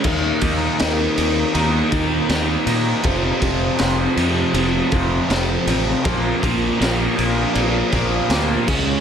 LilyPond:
<<
  \new Staff \with { instrumentName = "String machine" } { \time 4/4 \key bes \major \tempo 4 = 80 << { <ees' bes' g''>1 | <c' a' f''>1 | <d' bes' f''>2.~ <d' bes' f''>8 <des' aes' f''>8 | } \\ { g'1 | f'1~ | f'1 | } >> }
  \new Staff \with { instrumentName = "Distorted electric guitar" } { \clef bass \time 4/4 \key bes \major <ees bes ees'>8 <ees bes ees'>8 <ees bes ees'>8 <ees bes ees'>8 <ees bes ees'>8 <ees bes ees'>8 <ees bes ees'>8 <ees bes ees'>8 | <f, c f>8 <f, c f>8 <f, c f>8 <f, c f>8 <f, c f>8 <f, c f>8 <f, c f>8 <f, c f>8 | <bes, f bes>8 <bes, f bes>8 <bes, f bes>8 <bes, f bes>8 <bes, f bes>8 <bes, f bes>8 <bes, f bes>8 <des aes des'>8 | }
  \new Staff \with { instrumentName = "Overdriven electric guitar" } { \clef bass \time 4/4 \key bes \major <ees bes ees'>8 <ees bes ees'>8 <ees bes ees'>8 <ees bes ees'>8 <ees bes ees'>8 <ees bes ees'>8 <ees bes ees'>8 <ees bes ees'>8 | <f, c f>8 <f, c f>8 <f, c f>8 <f, c f>8 <f, c f>8 <f, c f>8 <f, c f>8 <f, c f>8 | <bes, f bes>8 <bes, f bes>8 <bes, f bes>8 <bes, f bes>8 <bes, f bes>8 <bes, f bes>8 <bes, f bes>8 <des aes des'>8 | }
  \new Staff \with { instrumentName = "Overdriven electric guitar" } { \clef bass \time 4/4 \key bes \major <ees bes ees'>2 <ees bes ees'>2 | <f, c f>2 <f, c f>2 | <bes, f bes>2 <bes, f bes>4. <des aes des'>8 | }
  \new Staff \with { instrumentName = "Fingered electric bass" } { \clef bass \time 4/4 \key bes \major ees,8 ees,8 ees,8 ees,8 ees,8 ees,8 ees,8 bes,8 | f,,8 f,,8 f,,8 f,8 f,,8 f,,8 f,,8 a,,8 | bes,,8 bes,,8 bes,,8 bes,,8 bes,,8 bes,,8 d,8 des,8 | }
  \new DrumStaff \with { instrumentName = "Drums" } \drummode { \time 4/4 <cymc bd>8 <bd cymr>8 <cymr sn>8 cymr8 cymr8 <bd cymr>8 <cymr sn>8 cymr8 | <bd cymr>8 <bd cymr>8 <cymr sn>8 cymr8 cymr8 <bd cymr>8 <cymr sn>8 cymr8 | <bd cymr>8 <bd cymr>8 <cymr sn>8 cymr8 cymr8 <bd cymr>8 <cymr sn>8 <cymc bd>8 | }
>>